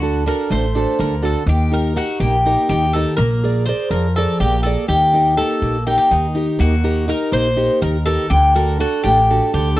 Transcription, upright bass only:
0.00 0.28 D2 medium
0.50 0.84 A1 medium
0.99 1.33 D2 medium
1.46 1.98 D#2 medium
2.20 2.54 A#1 medium
2.69 3.03 D#2 medium
3.18 3.69 A#1 loud
3.91 4.25 F2 medium
4.40 4.74 A#1 medium
4.89 5.40 D#2 medium
5.62 5.96 A#1 medium
6.11 6.45 D#2 medium
6.60 7.11 D#2 medium
7.32 7.67 A#1 medium
7.82 8.16 D#2 medium
8.30 8.82 D2 medium
9.04 9.39 A1 medium
9.54 9.80 D2 medium

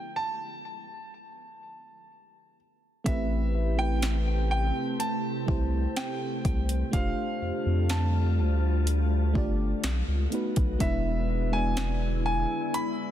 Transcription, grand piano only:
0.00 0.19 G5 loud
0.16 2.54 A5 medium
3.06 3.81 E5 medium
3.79 4.50 G5 loud
4.51 4.96 G5 loud
5.00 5.99 A5 loud
5.97 6.96 G5 loud
6.93 7.93 F5 loud
7.90 10.28 A5 loud
10.81 11.55 E5 loud
11.53 12.24 G#5 loud
12.26 12.75 G#5 loud
12.74 13.11 B5 loud

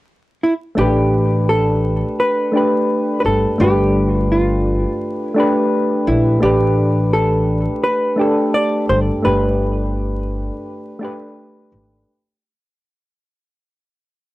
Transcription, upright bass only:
0.78 2.01 A1 loud
3.25 3.43 G1 medium
3.60 4.83 G1 loud
6.07 6.37 A#1 medium
6.43 7.66 A1 loud
8.89 9.08 G1 medium
9.25 10.48 G1 loud
11.72 12.02 G#1 medium

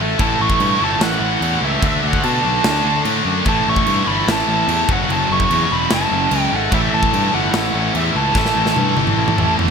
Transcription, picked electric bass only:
0.00 0.14 A1 medium
0.20 0.34 A1 medium
0.40 0.55 A1 medium
0.60 0.75 G2 medium
0.81 0.96 G1 medium
1.00 1.15 A1 medium
1.20 1.36 A1 medium
1.41 1.56 E2 medium
1.61 1.77 C#2 medium
1.82 1.97 D2 loud
2.03 2.18 D2 medium
2.24 2.39 B2 medium
2.45 2.59 B1 medium
2.65 2.80 D2 medium
2.84 2.99 D2 medium
3.05 3.20 A2 medium
3.25 3.40 F#2 medium
3.45 3.60 A1 medium
3.67 3.81 A1 loud
3.86 4.01 G2 medium
4.07 4.22 G1 medium
4.27 4.42 A1 medium
4.47 4.62 A1 medium
4.68 4.83 E2 medium
4.89 5.04 F#1 medium
5.09 5.24 F#1 loud
5.29 5.44 F#1 loud
5.50 5.65 E2 medium
5.71 5.86 E1 medium
5.90 6.05 F#1 loud
6.11 6.26 F#1 medium
6.31 6.46 C#2 medium
6.53 6.67 G#1 loud
6.72 6.87 A1 medium
6.93 7.08 A1 medium
7.13 7.28 G2 medium
7.34 7.48 G1 medium
7.54 7.69 A1 loud
7.74 7.89 A1 medium
7.95 8.10 E2 medium
8.15 8.30 C#2 medium
8.34 8.50 A1 loud
8.56 8.71 A1 medium
8.77 8.91 G2 medium
8.97 9.12 G1 medium
9.17 9.32 A1 medium
9.37 9.52 A1 medium
9.58 9.71 E2 medium

